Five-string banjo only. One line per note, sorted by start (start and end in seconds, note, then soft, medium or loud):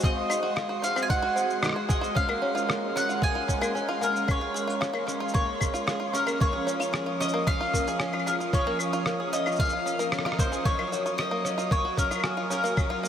0.03 0.29 C4 medium
0.30 0.42 D#4 medium
0.43 0.55 F#4 medium
0.56 0.68 G#4 medium
0.69 0.77 F#4 medium
0.82 0.95 D#4 medium
0.96 1.08 C4 loud
1.09 1.21 D#4 medium
1.22 1.35 F#4 loud
1.36 1.61 C4 medium
1.62 1.74 D#4 medium
1.76 1.88 F#4 medium
1.89 2.01 G#4 medium
2.01 2.09 F#4 medium
2.15 2.28 C#4 medium
2.29 2.41 A#3 loud
2.42 2.54 C#4 medium
2.55 2.67 F4 loud
2.68 2.94 A#3 medium
2.96 3.07 C#4 medium
3.09 3.21 F4 medium
3.22 3.34 G#4 medium
3.35 3.43 F4 medium
3.48 3.61 C#4 medium
3.61 3.73 A#3 loud
3.75 3.87 C#4 medium
3.89 4.00 F4 loud
4.01 4.27 A#3 medium
4.28 4.40 C#4 medium
4.41 4.53 F4 medium
4.54 4.66 G#4 medium
4.67 4.75 F4 medium
4.81 4.93 C#4 medium
4.93 5.06 A#3 loud
5.07 5.19 C#4 medium
5.20 5.33 F4 loud
5.34 5.59 A#3 medium
5.60 5.73 C#4 medium
5.74 5.86 F4 medium
5.87 5.99 G#4 medium
6.00 6.08 F4 medium
6.13 6.26 C#4 medium
6.27 6.39 A#3 loud
6.40 6.52 A#3 medium
6.53 6.65 G#4 medium
6.67 6.79 C#4 medium
6.80 6.92 F4 medium
6.93 7.05 G#4 medium
7.06 7.14 F4 medium
7.20 7.33 C#4 medium
7.34 7.45 A#3 loud
7.47 7.59 C#4 medium
7.61 7.72 F4 loud
7.74 7.85 A#3 medium
7.88 7.99 G#4 medium
8.00 8.12 C#4 medium
8.14 8.25 F4 medium
8.27 8.38 G#4 medium
8.40 8.47 F4 medium
8.53 8.66 C#4 medium
8.67 8.78 A#3 loud
8.80 8.92 C#4 medium
8.93 9.05 F4 loud
9.06 9.18 A#3 medium
9.20 9.31 G#4 medium
9.33 9.45 C#4 medium
9.47 9.58 F4 medium
9.60 9.71 G#4 medium
9.73 9.80 F4 medium
9.86 9.98 C#4 medium
9.99 10.11 A#3 loud
10.13 10.24 C#4 medium
10.26 10.38 F4 loud
10.39 10.51 A#3 medium
10.52 10.64 G#4 medium
10.66 10.78 C#4 medium
10.79 10.91 F4 medium
10.92 11.04 F#4 medium
11.06 11.13 F4 medium
11.18 11.31 C#4 medium
11.31 11.43 A#3 loud
11.45 11.57 C#4 medium
11.58 11.70 F4 loud
11.71 11.83 A#3 medium
11.85 11.97 F#4 medium
11.97 12.10 C#4 medium
12.11 12.23 F4 medium
12.24 12.36 F#4 medium
12.37 12.45 F4 medium
12.50 12.63 C#4 medium
12.64 12.76 A#3 loud
12.77 12.89 C#4 medium
12.90 13.02 F4 loud
13.03 13.08 A#3 medium